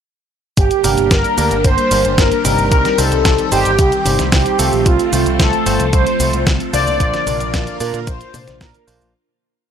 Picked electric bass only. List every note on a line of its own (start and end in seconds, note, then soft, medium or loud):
0.57 0.69 G1 loud
0.84 0.95 G1 medium
0.98 1.09 G1 medium
1.11 1.22 G1 loud
1.38 1.49 D2 loud
1.51 1.62 G1 medium
1.64 1.76 G1 loud
1.91 2.03 G1 loud
2.05 2.16 G1 medium
2.18 2.29 G1 loud
2.45 2.56 G1 medium
2.58 2.70 G1 medium
2.72 2.83 C2 loud
2.98 3.10 C2 medium
3.12 3.23 C2 medium
3.25 3.36 C2 loud
3.52 3.63 G1 loud
3.65 3.77 G1 medium
3.79 3.90 C2 loud
4.05 4.17 G1 loud
4.19 4.30 C2 medium
4.32 4.44 C2 loud
4.59 4.70 C2 medium
4.73 4.84 A#1 medium
4.86 4.97 C2 loud
5.13 5.24 C2 loud
5.26 5.37 C2 medium
5.40 5.51 C2 loud
5.66 5.78 G1 medium
5.80 5.91 C2 medium
5.93 6.04 C2 loud
6.20 6.31 C2 loud
6.33 6.45 C2 medium
6.47 6.58 C2 loud
6.73 6.85 C2 medium
6.87 6.98 C2 medium
7.00 7.12 A#1 loud
7.27 7.38 A#1 medium
7.40 7.52 A#1 medium
7.54 7.65 A#1 loud
7.80 7.92 A#2 loud
7.94 8.05 A#2 medium
8.07 8.19 A#1 loud
8.34 8.45 A#2 medium
8.47 8.59 A#1 medium
8.61 8.72 A#2 loud
8.88 8.99 A#1 medium
9.01 9.12 A#1 medium